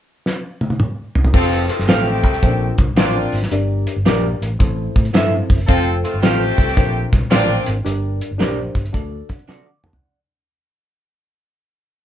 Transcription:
0.26 snare
0.61 high tom
0.70 high tom
0.80 mid tom
1.15 floor tom
1.25 floor tom
1.33 fingered electric bass F1, reed electric piano C4 F4 A4 C5, horn section C4 F4 A4, kick, crash
1.68 horn section A3 C4 F4, closed hi-hat
1.79 fingered electric bass G1, snare
1.87 fingered electric bass A1, horn section A3 C4 G4, reed electric piano C4 F4 A4 C5, clean electric guitar F4 A4 C5 F5, snare, closed hi-hat
2.24 fingered electric bass C2, kick, closed hi-hat
2.34 closed hi-hat
2.42 fingered electric bass A#1, reed electric piano A#2 C#4 F4 A#4 C5, kick, closed hi-hat
2.48 reed electric piano D4
2.78 fingered electric bass C2, kick, closed hi-hat
2.96 fingered electric bass A1, horn section C4 D4 F4, clean electric guitar C4 F4 A#4 D5, reed electric piano D4 F4 A#4 C5, snare, closed hi-hat
3.32 fingered electric bass G#1, open hi-hat
3.43 snare
3.51 fingered electric bass G1, reed electric piano G2 D4 G4 A#4 D5, closed hi-hat
3.87 closed hi-hat
3.96 fingered electric bass G1
4.05 fingered electric bass A#1, clean electric guitar D4 G4 A#4 D5, reed electric piano D4 G4 A#4 D5, snare, closed hi-hat
4.42 fingered electric bass A1, closed hi-hat
4.59 fingered electric bass A1, reed electric piano A2 C4 E4 A4 C5, kick, closed hi-hat
4.96 fingered electric bass A2, kick, closed hi-hat
5.05 closed hi-hat
5.13 fingered electric bass G2, reed electric piano C4 E4 A4 C5, clean electric guitar E4 A4 C5 E5, snare, closed hi-hat
5.50 fingered electric bass F#1, kick, open hi-hat
5.67 fingered electric bass F1, horn section C4 F4 A4, reed electric piano C4 F4 A4 C5, kick, closed hi-hat
6.03 horn section A3 C4 F4, closed hi-hat
6.14 fingered electric bass G1
6.21 fingered electric bass A1, horn section A3 C4 G4, reed electric piano C4 F4 A4 C5, clean electric guitar F4 A4 C5 F5, snare, closed hi-hat
6.58 fingered electric bass C2, kick, closed hi-hat
6.69 closed hi-hat
6.77 fingered electric bass A#1, reed electric piano A#2 D4 F4 A#4 C5, kick, closed hi-hat
7.13 fingered electric bass C2, kick, snare, closed hi-hat
7.30 fingered electric bass A1, horn section C4 D4 F4, clean electric guitar C4 F4 A#4 D5, reed electric piano C4 F4 A#4 C5, snare, closed hi-hat
7.37 reed electric piano D4
7.66 fingered electric bass G#1, closed hi-hat
7.85 fingered electric bass G1, reed electric piano G2 D4 G4 A#4 D5, closed hi-hat
8.21 closed hi-hat
8.31 fingered electric bass G1
8.38 fingered electric bass A#1, reed electric piano D4 G4 A#4 C5, clean electric guitar D4 G4 A#4 D5, snare, closed hi-hat
8.75 fingered electric bass G1, kick, closed hi-hat
8.85 closed hi-hat
8.93 fingered electric bass D2, reed electric piano D3 D4 F#4 A4 D5, kick, closed hi-hat
9.29 fingered electric bass D3, reed electric piano F#5, kick, snare, closed hi-hat
9.39 closed hi-hat
9.48 fingered electric bass C3, clean electric guitar D4 F#4 A4 D5, reed electric piano D5 A5 C6, snare
9.67 reed electric piano D6
9.84 fingered electric bass D#2, reed electric piano F#5 A5, mid tom
9.93 reed electric piano D5 F#5, floor tom

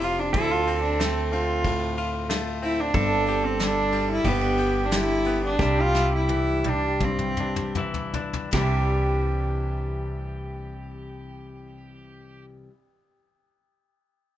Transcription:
Already playing: upright bass F1, clean electric guitar F2 F3 A3, pedal steel guitar F4
0.01 clean electric guitar C3, cello F4, ride
0.19 cello D4
0.33 upright bass D2, clean electric guitar D3 C4, cello E4, pedal steel guitar A4, kick, ride
0.51 cello F4
0.67 clean electric guitar C4, ride
0.82 cello D4
1.00 clean electric guitar A3, cello C4, snare, ride
1.32 clean electric guitar C4, cello F4, ride
1.64 clean electric guitar A2, kick, ride
1.97 clean electric guitar F4, ride
2.29 clean electric guitar A3 F4, snare, ride
2.62 clean electric guitar C4, cello E4, ride
2.80 cello D4
2.94 upright bass G1, clean electric guitar G2 C4, pedal steel guitar A4, kick, ride
3.27 clean electric guitar G4, ride
3.45 cello C4
3.59 clean electric guitar D3, cello D4, snare, ride
3.92 clean electric guitar G3, ride
4.12 cello E4
4.24 upright bass G1, clean electric guitar G2 B3, cello B3, pedal steel guitar G4, kick, ride
4.41 clean electric guitar D4
4.57 clean electric guitar G4, ride
4.85 cello D4
4.91 clean electric guitar D3, snare, ride
4.95 cello E4
5.25 clean electric guitar B3, ride
5.45 cello D4
5.59 upright bass C2, clean electric guitar C3 G3 D4 E4, pedal steel guitar G4, kick, snare
5.81 cello F4
5.95 clean electric guitar E4, snare
6.16 cello E4
6.29 clean electric guitar E3, high tom
6.64 clean electric guitar G3, high tom
6.69 cello D4
7.00 clean electric guitar G2, cello C4, kick, mid tom
7.19 mid tom
7.37 clean electric guitar D4, mid tom
7.56 mid tom
7.75 clean electric guitar E3 E4, mid tom
7.94 floor tom
8.14 clean electric guitar D4, floor tom
8.33 floor tom
8.53 upright bass C2, clean electric guitar C3 E3, pedal steel guitar G4, kick, snare, ride bell
8.57 clean electric guitar G3 D4 E4

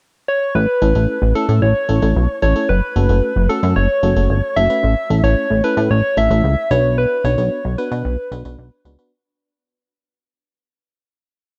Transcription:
0.28 soft synth lead C#5
0.55 analog synth bass A1, soft synth lead B4
0.82 analog synth bass A1, fm electric piano A3 C#4 E4 A4
0.95 analog synth bass A1, fm electric piano A3 C#4 E4 A4
1.22 analog synth bass A1
1.35 fm electric piano A3 C#4 E4 A4, soft synth lead A4
1.49 analog synth bass A2, fm electric piano A3 C#4 E4 A4
1.62 analog synth bass A1, soft synth lead C#5
1.89 analog synth bass A1, fm electric piano A3 C#4 E4 A4
2.02 analog synth bass A1, fm electric piano A3 C#4 E4 A4
2.16 analog synth bass B1
2.42 analog synth bass A1, fm electric piano A3 C#4 E4 A4, soft synth lead C#5
2.56 fm electric piano A3 C#4 E4 A4
2.69 analog synth bass F#1, soft synth lead B4
2.96 analog synth bass F#1, fm electric piano A3 C#4 F#4 A4
3.09 analog synth bass F#1, fm electric piano A3 C#4 F#4 A4
3.36 analog synth bass F#1
3.49 fm electric piano A3 C#4 F#4 A4, soft synth lead A4
3.63 analog synth bass F#2, fm electric piano A3 C#4 F#4 A4
3.76 analog synth bass F#1, soft synth lead C#5
4.03 analog synth bass F#1, fm electric piano A3 C#4 F#4 A4
4.16 analog synth bass F#1, fm electric piano A3 C#4 F#4 A4
4.30 analog synth bass G1
4.56 analog synth bass F#1, fm electric piano A3 C#4 F#4 A4, soft synth lead E5
4.70 fm electric piano A3 C#4 F#4 B4
4.83 analog synth bass A1
5.10 analog synth bass A1, fm electric piano A3 C#4 E4 A4
5.23 analog synth bass A1, fm electric piano A3 C#4 E4 A4, soft synth lead C#5
5.50 analog synth bass A1
5.64 fm electric piano A3 C#4 E4 A4, soft synth lead B4
5.77 analog synth bass A2, fm electric piano A3 C#4 E4 A4
5.90 analog synth bass A1, soft synth lead C#5
6.17 analog synth bass A1, fm electric piano A3 C#4 E4 A4, soft synth lead E5
6.30 analog synth bass A1, fm electric piano A3 C#4 E4 A4
6.44 analog synth bass C#2
6.71 analog synth bass B1, fm electric piano B3 D4 F#4 B4, soft synth lead C#5
6.98 soft synth lead B4
7.24 analog synth bass B1, fm electric piano B3 D4 F#4 B4, soft synth lead C#5
7.38 analog synth bass B1, fm electric piano B3 D4 F#4 B4
7.65 analog synth bass B1
7.78 fm electric piano B3 D4 F#4 B4, soft synth lead B4
7.91 analog synth bass B2, fm electric piano B3 D4 F#4 B4
8.05 analog synth bass B1
8.32 analog synth bass B1, fm electric piano B3 D4 F#4 B4
8.45 analog synth bass B1, fm electric piano B3 D4 F#4 B4
8.58 analog synth bass B1
8.85 analog synth bass C#2, fm electric piano B3 D4 F#4 B4
8.99 fm electric piano B3 D4 F#4 B4

